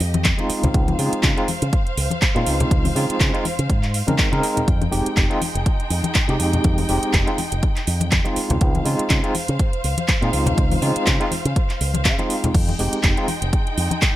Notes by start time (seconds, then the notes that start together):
Already playing: G#3 G4 D#5
0.00 F2, open hi-hat
0.14 closed hi-hat, muted conga, high conga
0.24 kick, clap, closed hi-hat
0.38 G#3 C4 D#4 F4, closed hi-hat, muted conga
0.49 C5 F5, muted fingered electric bass stroke, open hi-hat
0.63 C#2, closed hi-hat, muted conga, low conga
0.74 C#2, kick, closed hi-hat
0.88 closed hi-hat, high conga
0.99 C#3 G#3 C4 D#4 F4, open hi-hat
1.13 muted fingered electric bass stroke, closed hi-hat
1.23 C#3, kick, clap, closed hi-hat
1.37 G#3 C4 D#4 F4, closed hi-hat
1.48 open hi-hat, high conga
1.62 C#3, closed hi-hat
1.73 kick, closed hi-hat
1.87 closed hi-hat
1.97 C#2, open hi-hat
2.11 closed hi-hat, high conga
2.22 kick, clap, closed hi-hat
2.35 A#2 G#3 C4 D#4 F4, closed hi-hat
2.46 C#2, open hi-hat, muted conga
2.60 closed hi-hat, low conga
2.71 C#2, kick, closed hi-hat, muted conga
2.85 open hi-hat, high conga
2.95 C#3 G#3 C4 D#4 F4, open hi-hat
3.10 muted fingered electric bass stroke, closed hi-hat
3.20 C#3, kick, clap, closed hi-hat
3.34 G#3 C4 D#4 F4, closed hi-hat
3.45 open hi-hat, high conga
3.59 C#3, closed hi-hat
3.69 G#2, kick, closed hi-hat
3.83 clap, closed hi-hat
3.94 open hi-hat
4.07 C#3 G#3 C4 D#4 A#4, closed hi-hat, muted conga, high conga
4.18 kick, clap, closed hi-hat
4.32 C#3 G#3 C4 D#4 A#4, closed hi-hat, muted conga
4.43 open hi-hat
4.57 closed hi-hat, muted conga, low conga
4.68 F2 G#3 D#4 G5, kick, closed hi-hat
4.82 closed hi-hat, high conga
4.91 F1 G#3 C4 D#4 G4, open hi-hat
5.06 closed hi-hat
5.17 F1, kick, clap, closed hi-hat
5.30 G#3 C4 D#4 F4, closed hi-hat
5.42 open hi-hat, high conga
5.55 F1, closed hi-hat
5.66 kick, closed hi-hat
5.80 closed hi-hat
5.90 F2, open hi-hat
6.04 closed hi-hat, high conga
6.15 kick, clap, closed hi-hat
6.28 C3 G#3 C4 D#4 G4, closed hi-hat
6.40 F2, open hi-hat, muted conga
6.53 closed hi-hat, low conga
6.64 F2, kick, closed hi-hat, muted conga
6.78 open hi-hat, high conga
6.89 F1 G#3 C4 D#4 G4, open hi-hat
7.03 closed hi-hat
7.13 F1, kick, clap, closed hi-hat
7.27 G#3 C4 D#4 F4, closed hi-hat
7.38 open hi-hat, high conga
7.52 F1, closed hi-hat
7.63 kick, closed hi-hat
7.76 clap, closed hi-hat
7.87 F2, open hi-hat
8.01 closed hi-hat, muted conga, high conga
8.11 kick, clap, closed hi-hat
8.24 G#3 C4 D#4 F4, closed hi-hat, muted conga
8.36 C5 F5, muted fingered electric bass stroke, open hi-hat
8.50 C#2, closed hi-hat, muted conga, low conga
8.61 C#2, kick, closed hi-hat
8.75 closed hi-hat, high conga
8.85 C#3 G#3 C4 D#4 F4, open hi-hat
8.99 muted fingered electric bass stroke, closed hi-hat
9.10 C#3, kick, clap, closed hi-hat
9.23 G#3 C4 D#4 F4, closed hi-hat
9.35 open hi-hat, high conga
9.48 C#3, closed hi-hat
9.59 kick, closed hi-hat
9.73 closed hi-hat
9.84 C#2, open hi-hat
9.98 closed hi-hat, high conga
10.08 kick, clap, closed hi-hat
10.21 A#2 G#3 C4 D#4 F4, closed hi-hat
10.33 C#2, open hi-hat, muted conga
10.46 closed hi-hat, low conga
10.58 C#2, kick, closed hi-hat, muted conga
10.72 open hi-hat, high conga
10.82 C#3 G#3 C4 D#4 F4, open hi-hat
10.96 muted fingered electric bass stroke, closed hi-hat
11.06 C#3, kick, clap, closed hi-hat
11.20 G#3 C4 D#4 F4, closed hi-hat
11.31 open hi-hat, high conga
11.45 C#3, closed hi-hat
11.56 kick, closed hi-hat
11.70 clap, closed hi-hat
11.81 C#2, open hi-hat
11.94 closed hi-hat, muted conga, high conga
12.05 C#3, kick, clap, closed hi-hat
12.18 G#3 C4 D#4 F4, closed hi-hat, muted conga
12.30 open hi-hat
12.44 closed hi-hat, muted conga, low conga
12.54 F2 G#3 D#4 G5, kick, closed hi-hat, crash
12.68 closed hi-hat, high conga
12.79 F1 G#3 C4 D#4 G4, open hi-hat
12.93 closed hi-hat
13.03 F1, kick, clap, closed hi-hat
13.17 G#3 C4 D#4 F4, closed hi-hat
13.28 open hi-hat, high conga
13.42 F1, closed hi-hat
13.53 kick, closed hi-hat
13.67 closed hi-hat
13.77 F2, open hi-hat
13.91 closed hi-hat, high conga
14.02 kick, clap, closed hi-hat